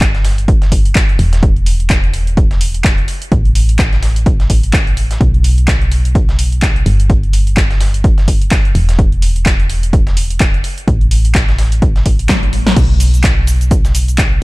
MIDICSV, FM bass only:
0, 0, Header, 1, 2, 480
1, 0, Start_track
1, 0, Tempo, 472441
1, 1450, Time_signature, 4, 2, 24, 8
1, 14661, End_track
2, 0, Start_track
2, 0, Title_t, "FM bass"
2, 0, Program_c, 0, 39
2, 0, Note_on_c, 0, 31, 89
2, 1190, Note_off_c, 0, 31, 0
2, 1210, Note_on_c, 0, 28, 91
2, 3110, Note_off_c, 0, 28, 0
2, 3370, Note_on_c, 0, 33, 87
2, 5270, Note_off_c, 0, 33, 0
2, 5290, Note_on_c, 0, 35, 88
2, 6950, Note_off_c, 0, 35, 0
2, 6970, Note_on_c, 0, 31, 91
2, 8870, Note_off_c, 0, 31, 0
2, 8890, Note_on_c, 0, 28, 90
2, 10790, Note_off_c, 0, 28, 0
2, 11050, Note_on_c, 0, 33, 90
2, 12950, Note_off_c, 0, 33, 0
2, 12970, Note_on_c, 0, 35, 86
2, 14630, Note_off_c, 0, 35, 0
2, 14661, End_track
0, 0, End_of_file